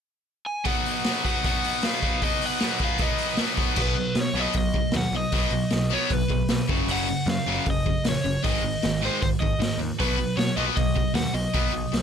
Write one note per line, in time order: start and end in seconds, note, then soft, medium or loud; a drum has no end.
0.46 0.66 G#5 medium
0.64 1.04 B2 medium
0.64 1.05 F#3 medium
0.64 1.05 B3 medium
0.64 1.06 D#4 medium
0.64 1.24 F#5 loud
0.64 kick medium
0.64 open hi-hat medium
0.85 open hi-hat medium
1.04 1.23 B2 medium
1.04 1.24 F#3 medium
1.04 1.25 B3 medium
1.04 1.25 D#4 medium
1.04 snare loud
1.04 open hi-hat medium
1.24 1.42 B2 medium
1.24 1.43 F#3 medium
1.24 1.44 B3 medium
1.24 1.44 D#4 medium
1.24 1.44 F#5 medium
1.24 kick medium
1.24 open hi-hat medium
1.43 1.81 B2 medium
1.43 1.82 F#3 medium
1.43 1.82 B3 medium
1.43 1.83 D#4 loud
1.43 1.84 F#5 medium
1.43 kick loud
1.43 open hi-hat medium
1.64 open hi-hat medium
1.82 2.02 B2 medium
1.82 2.03 F#3 medium
1.82 2.03 B3 medium
1.82 2.04 D#4 medium
1.82 2.23 F5 medium
1.82 snare loud
1.82 open hi-hat medium
2.02 2.20 B2 medium
2.02 2.20 F#3 medium
2.02 2.21 B3 medium
2.02 2.21 D#4 medium
2.02 kick medium
2.02 open hi-hat soft
2.21 2.59 B2 medium
2.21 2.60 F#3 medium
2.21 2.61 B3 loud
2.21 2.61 D#4 loud
2.21 2.46 D#5 medium
2.21 kick medium
2.21 open hi-hat medium
2.41 open hi-hat medium
2.46 2.83 F#5 medium
2.60 2.77 B2 medium
2.60 2.78 F#3 medium
2.60 2.78 B3 medium
2.60 2.79 D#4 medium
2.60 snare loud
2.60 open hi-hat medium
2.79 2.97 B2 medium
2.79 2.98 F#3 medium
2.79 2.98 B3 medium
2.79 2.99 D#4 medium
2.79 kick medium
2.79 open hi-hat soft
2.84 3.02 F5 medium
2.98 3.36 B2 medium
2.98 3.37 F#3 medium
2.98 3.37 B3 loud
2.98 3.38 D#4 loud
2.98 kick loud
2.98 open hi-hat medium
3.02 3.39 D#5 medium
3.18 open hi-hat medium
3.37 3.56 B2 medium
3.37 3.56 F#3 medium
3.37 3.56 B3 medium
3.37 3.57 D#4 medium
3.37 snare loud
3.37 open hi-hat medium
3.57 3.73 B2 medium
3.57 3.75 F#3 medium
3.57 3.75 B3 medium
3.57 3.76 D#4 medium
3.57 kick loud
3.57 open hi-hat medium
3.75 4.01 B1 loud
3.75 3.94 B2 medium
3.75 3.94 F#3 medium
3.75 3.95 B3 loud
3.75 kick loud
3.75 crash loud
3.82 4.19 B4 medium
3.97 4.14 B2 medium
3.97 4.14 F#3 medium
4.15 4.28 B2 medium
4.15 4.34 B2 medium
4.15 4.34 F#3 medium
4.15 snare loud
4.15 open hi-hat medium
4.21 4.40 C#5 medium
4.34 4.46 B1 loud
4.34 4.53 B2 medium
4.34 4.54 F#3 medium
4.34 4.54 B3 medium
4.40 4.57 D#5 medium
4.53 4.79 B1 medium
4.53 4.72 B2 medium
4.53 4.72 F#3 medium
4.53 kick loud
4.53 open hi-hat medium
4.58 4.96 D#5 loud
4.74 4.92 B2 medium
4.74 4.93 F#3 medium
4.74 kick medium
4.91 5.06 D#2 medium
4.91 5.11 B2 medium
4.91 5.11 F#3 medium
4.91 snare loud
4.91 open hi-hat medium
4.97 5.15 F#5 loud
5.12 5.24 B1 medium
5.12 5.31 B2 medium
5.12 5.31 F#3 medium
5.17 5.95 D#5 loud
5.32 5.45 B1 medium
5.32 5.51 B2 medium
5.32 5.52 F#3 medium
5.32 5.52 B3 medium
5.32 kick loud
5.32 open hi-hat medium
5.51 5.63 B1 medium
5.51 5.70 B2 medium
5.51 5.70 F#3 medium
5.71 5.96 B1 medium
5.71 5.90 B2 medium
5.71 5.90 F#3 medium
5.71 snare loud
5.71 open hi-hat medium
5.92 6.10 B2 medium
5.92 6.10 F#3 loud
5.92 6.10 B3 loud
5.92 6.13 C#5 loud
6.10 6.23 B1 medium
6.10 6.29 B2 medium
6.10 6.29 F#3 medium
6.10 6.70 B4 loud
6.10 kick loud
6.10 open hi-hat medium
6.30 6.42 B1 medium
6.30 6.48 B2 medium
6.30 6.48 F#3 medium
6.30 kick medium
6.48 6.61 B1 medium
6.48 6.68 B2 medium
6.48 6.67 F#3 medium
6.48 snare loud
6.48 open hi-hat medium
6.69 6.81 F#1 medium
6.69 6.87 F#2 medium
6.69 6.87 C#3 medium
6.69 6.88 F#3 medium
6.69 kick medium
6.87 7.12 F#1 medium
6.87 7.06 F#2 loud
6.87 7.07 C#3 medium
6.87 7.07 F#3 medium
6.87 open hi-hat medium
6.92 7.30 F#5 medium
7.09 7.25 F#2 medium
7.09 7.26 C#3 medium
7.26 7.38 F#2 medium
7.26 7.45 F#2 medium
7.26 7.45 C#3 medium
7.26 7.68 F5 loud
7.26 snare loud
7.26 open hi-hat medium
7.46 7.58 F#1 loud
7.46 7.64 F#2 medium
7.46 7.65 C#3 loud
7.46 7.65 F#3 medium
7.66 7.90 F#1 medium
7.66 7.84 F#2 medium
7.66 7.83 C#3 medium
7.66 kick loud
7.66 open hi-hat medium
7.70 8.08 D#5 loud
7.86 8.03 F#2 medium
7.86 8.03 C#3 medium
7.86 kick medium
8.04 8.16 A#1 medium
8.04 8.23 F#2 medium
8.04 8.23 C#3 medium
8.04 snare loud
8.04 open hi-hat medium
8.09 8.44 C#5 loud
8.24 8.36 F#1 medium
8.24 8.41 F#2 medium
8.24 8.41 C#3 medium
8.43 8.57 G#1 medium
8.43 8.61 G#2 medium
8.43 8.62 D#3 medium
8.43 8.62 G#3 medium
8.43 9.04 D#5 loud
8.43 kick loud
8.43 open hi-hat medium
8.63 8.75 G#1 medium
8.63 8.80 G#2 medium
8.63 8.81 D#3 medium
8.83 9.08 G#1 medium
8.83 9.00 G#2 medium
8.83 9.00 D#3 medium
8.83 snare loud
8.83 open hi-hat medium
9.01 9.20 G#2 medium
9.01 9.20 D#3 medium
9.01 9.20 G#3 loud
9.01 9.21 C5 medium
9.21 9.34 G#1 medium
9.21 9.38 G#2 medium
9.21 9.39 D#3 medium
9.21 9.27 C5 medium
9.21 kick loud
9.21 open hi-hat medium
9.40 9.54 G#1 medium
9.40 9.58 G#2 medium
9.40 9.58 D#3 medium
9.40 9.76 D#5 loud
9.40 kick medium
9.59 9.71 G#1 medium
9.59 9.77 G#2 medium
9.59 9.77 D#3 loud
9.59 snare loud
9.59 open hi-hat medium
9.78 9.90 D#2 medium
9.78 9.97 G#2 medium
9.78 9.97 D#3 medium
9.98 10.24 B1 medium
9.98 10.17 B2 medium
9.98 10.17 F#3 medium
9.98 10.17 B3 medium
9.98 10.39 B4 medium
9.98 kick loud
9.98 open hi-hat medium
10.19 10.36 B2 medium
10.19 10.36 F#3 medium
10.37 10.49 B2 medium
10.37 10.55 B2 medium
10.37 10.55 F#3 medium
10.37 10.57 C#5 medium
10.37 snare loud
10.37 open hi-hat soft
10.56 10.69 B1 loud
10.56 10.75 B2 medium
10.56 10.75 F#3 medium
10.56 10.75 B3 loud
10.56 10.62 D#5 loud
10.76 11.01 B1 medium
10.76 10.94 B2 medium
10.76 10.94 F#3 medium
10.76 11.15 D#5 medium
10.76 kick loud
10.76 open hi-hat medium
10.95 11.13 B2 medium
10.95 11.13 F#3 medium
10.95 kick medium
11.14 11.26 D#2 medium
11.14 11.33 B2 medium
11.14 11.33 F#3 medium
11.14 11.34 F#5 medium
11.14 snare loud
11.14 open hi-hat medium
11.34 11.46 B1 medium
11.34 11.52 B2 medium
11.34 11.52 F#3 medium
11.34 12.02 D#5 medium
11.53 11.66 B1 medium
11.53 11.72 B2 medium
11.53 11.72 F#3 medium
11.53 11.72 B3 loud
11.53 kick loud
11.53 open hi-hat medium
11.73 11.85 B1 medium
11.73 11.90 B2 medium
11.73 11.91 F#3 medium
11.93 12.02 B1 medium
11.93 12.02 B2 medium
11.93 12.02 F#3 medium
11.93 snare medium
11.93 open hi-hat medium